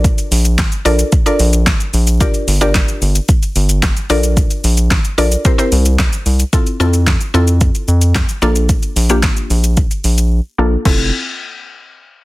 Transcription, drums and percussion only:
0.04 kick loud
0.04 closed hi-hat medium
0.04 shaker medium
0.18 closed hi-hat medium
0.18 shaker medium
0.32 open hi-hat medium
0.32 shaker medium
0.45 closed hi-hat medium
0.45 shaker medium
0.58 kick loud
0.58 snare medium
0.58 clap loud
0.58 closed hi-hat medium
0.58 shaker medium
0.72 closed hi-hat medium
0.72 shaker medium
0.86 open hi-hat medium
0.86 shaker medium
0.99 closed hi-hat medium
0.99 shaker medium
1.12 kick loud
1.12 closed hi-hat medium
1.12 shaker medium
1.26 closed hi-hat medium
1.26 shaker medium
1.39 open hi-hat medium
1.39 shaker medium
1.53 closed hi-hat medium
1.53 shaker medium
1.67 kick loud
1.67 snare loud
1.67 clap loud
1.67 closed hi-hat medium
1.67 shaker medium
1.80 closed hi-hat medium
1.80 shaker medium
1.94 open hi-hat medium
1.94 shaker medium
2.07 closed hi-hat medium
2.07 shaker medium
2.21 kick loud
2.21 closed hi-hat medium
2.21 shaker medium
2.34 closed hi-hat medium
2.34 shaker medium
2.48 open hi-hat medium
2.48 shaker medium
2.61 shaker medium
2.75 kick loud
2.75 snare medium
2.75 clap loud
2.75 closed hi-hat medium
2.75 shaker medium
2.88 closed hi-hat medium
2.88 shaker medium
3.02 open hi-hat medium
3.02 shaker soft
3.15 closed hi-hat medium
3.15 shaker medium
3.29 kick loud
3.29 closed hi-hat medium
3.29 shaker medium
3.43 closed hi-hat medium
3.43 shaker medium
3.56 open hi-hat medium
3.56 shaker medium
3.69 closed hi-hat medium
3.69 shaker medium
3.83 kick loud
3.83 snare medium
3.83 clap loud
3.83 closed hi-hat medium
3.83 shaker medium
3.97 closed hi-hat medium
3.97 shaker medium
4.10 open hi-hat medium
4.10 shaker medium
4.23 closed hi-hat medium
4.23 shaker medium
4.37 kick loud
4.37 closed hi-hat medium
4.37 shaker medium
4.50 closed hi-hat medium
4.50 shaker medium
4.64 open hi-hat medium
4.64 shaker medium
4.77 closed hi-hat medium
4.77 shaker medium
4.91 kick loud
4.91 snare medium
4.91 clap loud
4.91 closed hi-hat medium
4.91 shaker medium
5.05 closed hi-hat medium
5.05 shaker medium
5.18 open hi-hat medium
5.18 shaker soft
5.32 closed hi-hat medium
5.32 shaker medium
5.45 kick loud
5.45 closed hi-hat medium
5.45 shaker medium
5.59 closed hi-hat medium
5.59 shaker medium
5.72 open hi-hat medium
5.72 shaker medium
5.85 closed hi-hat medium
5.85 shaker medium
5.99 kick loud
5.99 snare medium
5.99 clap loud
5.99 closed hi-hat medium
5.99 shaker medium
6.13 closed hi-hat medium
6.13 shaker medium
6.26 open hi-hat medium
6.26 shaker medium
6.39 closed hi-hat medium
6.39 shaker medium
6.53 kick loud
6.53 closed hi-hat medium
6.53 shaker medium
6.67 closed hi-hat soft
6.67 shaker medium
6.80 shaker medium
6.93 closed hi-hat soft
6.93 shaker medium
7.07 kick loud
7.07 snare medium
7.07 clap loud
7.07 closed hi-hat medium
7.07 shaker medium
7.21 closed hi-hat medium
7.21 shaker medium
7.34 shaker soft
7.47 closed hi-hat medium
7.47 shaker medium
7.61 kick loud
7.61 closed hi-hat medium
7.61 shaker medium
7.75 closed hi-hat medium
7.75 shaker medium
7.88 shaker medium
8.01 closed hi-hat medium
8.01 shaker medium
8.15 kick loud
8.15 snare medium
8.15 clap loud
8.15 closed hi-hat medium
8.15 shaker medium
8.29 closed hi-hat medium
8.29 shaker medium
8.42 shaker medium
8.56 closed hi-hat medium
8.56 shaker medium
8.69 kick loud
8.69 closed hi-hat medium
8.69 shaker medium
8.83 closed hi-hat medium
8.83 shaker soft
8.96 open hi-hat medium
8.96 shaker medium
9.09 closed hi-hat soft
9.09 shaker medium
9.23 kick loud
9.23 snare medium
9.23 clap loud
9.23 closed hi-hat medium
9.23 shaker medium
9.37 closed hi-hat medium
9.37 shaker medium
9.50 open hi-hat medium
9.50 shaker medium
9.64 closed hi-hat medium
9.64 shaker medium
9.77 kick loud
9.77 closed hi-hat medium
9.77 shaker medium
9.91 closed hi-hat medium
9.91 shaker medium
10.04 open hi-hat medium
10.04 shaker medium
10.18 closed hi-hat medium
10.18 shaker medium
10.85 kick loud
10.85 crash medium

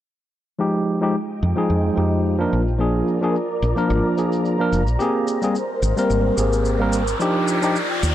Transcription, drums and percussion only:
0.87 shaker medium
1.02 shaker soft
1.57 shaker soft
1.70 shaker soft
1.97 shaker medium
2.12 shaker soft
2.25 shaker soft
2.52 shaker medium
2.67 shaker soft
2.80 shaker soft
3.08 shaker medium
3.23 shaker soft
3.35 shaker soft
3.63 shaker medium
3.77 shaker soft
3.90 shaker soft
4.18 shaker medium
4.32 shaker soft
4.45 shaker soft
4.73 shaker medium
4.87 shaker soft
5.00 shaker soft
5.27 shaker medium
5.42 shaker soft
5.55 shaker soft
5.83 shaker medium
5.98 shaker soft
6.10 shaker soft
6.38 shaker medium
6.53 shaker soft
6.65 shaker soft
6.93 shaker medium
7.07 shaker soft
7.20 shaker soft
7.48 shaker medium
7.63 shaker soft
7.76 shaker soft
8.03 shaker medium

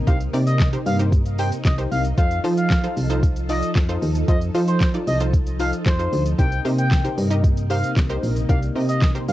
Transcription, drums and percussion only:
0.07 kick loud
0.07 closed hi-hat medium
0.07 shaker medium
0.20 closed hi-hat soft
0.20 shaker soft
0.34 open hi-hat medium
0.34 shaker soft
0.47 closed hi-hat medium
0.47 shaker medium
0.60 kick loud
0.60 snare loud
0.60 clap loud
0.60 closed hi-hat medium
0.60 shaker medium
0.73 closed hi-hat medium
0.73 shaker medium
0.86 open hi-hat medium
0.86 shaker medium
0.99 closed hi-hat medium
0.99 shaker medium
1.12 kick loud
1.12 closed hi-hat medium
1.12 shaker medium
1.26 closed hi-hat medium
1.26 shaker medium
1.39 open hi-hat medium
1.39 shaker medium
1.52 closed hi-hat medium
1.52 shaker medium
1.65 kick loud
1.65 snare loud
1.65 clap loud
1.65 closed hi-hat medium
1.65 shaker medium
1.79 closed hi-hat medium
1.79 shaker medium
1.92 open hi-hat medium
1.92 shaker soft
2.05 closed hi-hat medium
2.05 shaker medium
2.18 kick loud
2.18 closed hi-hat medium
2.18 shaker medium
2.31 closed hi-hat medium
2.31 shaker soft
2.44 open hi-hat medium
2.44 shaker soft
2.57 closed hi-hat medium
2.57 shaker medium
2.70 kick loud
2.70 snare loud
2.70 clap loud
2.70 closed hi-hat medium
2.70 shaker medium
2.83 closed hi-hat medium
2.83 shaker medium
2.97 open hi-hat medium
2.97 shaker medium
3.10 closed hi-hat medium
3.10 shaker medium
3.23 kick loud
3.23 closed hi-hat medium
3.23 shaker medium
3.36 closed hi-hat medium
3.36 shaker medium
3.49 open hi-hat medium
3.49 shaker medium
3.63 closed hi-hat medium
3.63 shaker medium
3.76 kick loud
3.76 snare loud
3.76 clap loud
3.76 closed hi-hat medium
3.76 shaker medium
3.89 closed hi-hat medium
3.89 shaker medium
4.02 open hi-hat medium
4.02 shaker medium
4.15 closed hi-hat medium
4.15 shaker medium
4.28 kick loud
4.28 closed hi-hat medium
4.28 shaker medium
4.41 closed hi-hat soft
4.41 shaker soft
4.55 open hi-hat medium
4.55 shaker soft
4.68 closed hi-hat medium
4.68 shaker medium
4.81 kick loud
4.81 snare loud
4.81 clap loud
4.81 closed hi-hat medium
4.81 shaker medium
4.94 closed hi-hat medium
4.94 shaker medium
5.07 open hi-hat medium
5.07 shaker medium
5.20 closed hi-hat medium
5.20 shaker medium
5.33 kick loud
5.33 closed hi-hat medium
5.33 shaker medium
5.47 closed hi-hat medium
5.47 shaker medium
5.60 open hi-hat medium
5.60 shaker medium
5.73 closed hi-hat medium
5.73 shaker medium
5.86 kick loud
5.86 snare loud
5.86 clap loud
5.86 closed hi-hat medium
5.86 shaker medium
6.00 closed hi-hat medium
6.00 shaker medium
6.13 open hi-hat medium
6.13 shaker soft
6.26 closed hi-hat medium
6.26 shaker medium
6.39 kick loud
6.39 closed hi-hat medium
6.39 shaker medium
6.52 closed hi-hat soft
6.52 shaker soft
6.65 open hi-hat medium
6.65 shaker soft
6.78 closed hi-hat medium
6.78 shaker medium
6.91 kick loud
6.91 snare loud
6.91 clap loud
6.91 closed hi-hat medium
6.91 shaker medium
7.05 closed hi-hat medium
7.05 shaker medium
7.18 open hi-hat medium
7.18 shaker medium
7.31 closed hi-hat medium
7.31 shaker medium
7.44 kick loud
7.44 closed hi-hat medium
7.44 shaker medium
7.57 closed hi-hat medium
7.57 shaker medium
7.70 open hi-hat medium
7.70 shaker medium
7.84 closed hi-hat medium
7.84 shaker medium
7.97 kick loud
7.97 snare loud
7.97 clap loud
7.97 closed hi-hat medium
7.97 shaker medium
8.10 closed hi-hat medium
8.10 shaker medium
8.23 open hi-hat medium
8.23 shaker medium
8.36 closed hi-hat medium
8.36 shaker medium
8.49 kick loud
8.49 closed hi-hat medium
8.49 shaker medium
8.63 closed hi-hat soft
8.63 shaker soft
8.76 open hi-hat medium
8.76 shaker soft
8.89 closed hi-hat medium
8.89 shaker medium
9.02 kick loud
9.02 snare loud
9.02 clap loud
9.02 closed hi-hat medium
9.02 shaker medium
9.15 closed hi-hat medium
9.15 shaker medium
9.28 open hi-hat medium
9.28 shaker medium

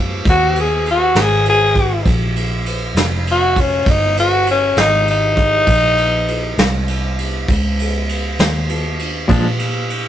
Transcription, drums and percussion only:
0.25 kick medium
0.25 snare soft
0.25 ride medium
0.56 ride medium
0.86 ride soft
1.15 snare loud
1.15 ride medium
1.45 ride medium
1.75 kick medium
1.75 ride medium
2.06 kick loud
2.06 ride medium
2.36 ride medium
2.66 ride medium
2.96 snare medium
2.96 ride medium
3.27 ride medium
3.56 kick medium
3.56 ride medium
3.86 kick loud
3.86 snare soft
3.86 ride medium
4.17 ride medium
4.47 ride medium
4.77 snare loud
4.77 ride medium
5.08 ride medium
5.37 kick medium
5.37 snare soft
5.37 ride medium
5.67 kick medium
5.67 ride medium
5.98 ride medium
6.28 ride medium
6.58 snare loud
6.58 ride medium
6.88 ride medium
7.18 ride medium
7.48 kick medium
7.48 ride medium
7.79 ride medium
8.09 ride medium
8.39 snare loud
8.39 ride medium
8.69 ride medium
8.99 ride medium
9.29 kick loud
9.29 ride medium
9.59 ride medium
9.90 ride medium

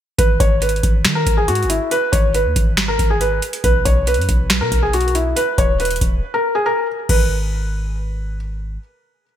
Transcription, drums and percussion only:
0.19 kick loud
0.19 closed hi-hat medium
0.40 kick loud
0.40 closed hi-hat medium
0.62 closed hi-hat medium
0.69 closed hi-hat medium
0.76 closed hi-hat soft
0.83 kick medium
0.83 closed hi-hat medium
1.05 finger snap loud
1.05 snare loud
1.05 closed hi-hat medium
1.26 kick medium
1.26 closed hi-hat medium
1.48 closed hi-hat medium
1.55 closed hi-hat medium
1.63 closed hi-hat soft
1.70 closed hi-hat medium
1.91 closed hi-hat medium
2.13 kick loud
2.13 closed hi-hat medium
2.34 closed hi-hat medium
2.56 kick medium
2.56 closed hi-hat medium
2.77 finger snap loud
2.77 snare loud
2.77 closed hi-hat medium
2.99 kick medium
2.99 closed hi-hat medium
3.21 closed hi-hat medium
3.42 closed hi-hat medium
3.53 closed hi-hat medium
3.64 kick loud
3.64 closed hi-hat medium
3.85 kick loud
3.85 closed hi-hat medium
4.07 closed hi-hat medium
4.14 closed hi-hat medium
4.21 closed hi-hat soft
4.29 kick medium
4.29 closed hi-hat medium
4.50 finger snap medium
4.50 snare loud
4.50 closed hi-hat medium
4.72 kick medium
4.72 closed hi-hat medium
4.93 closed hi-hat medium
5.01 closed hi-hat medium
5.08 closed hi-hat soft
5.15 closed hi-hat medium
5.37 closed hi-hat medium
5.58 kick loud
5.58 closed hi-hat medium
5.80 closed hi-hat medium
5.85 closed hi-hat medium
5.91 closed hi-hat medium
5.96 closed hi-hat medium
6.01 kick medium
6.01 closed hi-hat medium
7.09 kick loud
7.09 crash medium

